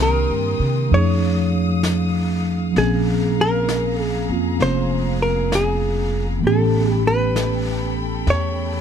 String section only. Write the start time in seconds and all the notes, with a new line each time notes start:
Already playing: A#4 G5 C6 D#6
0.90 F5 D#6
2.74 G#4 A#5
6.42 A4 G5 B5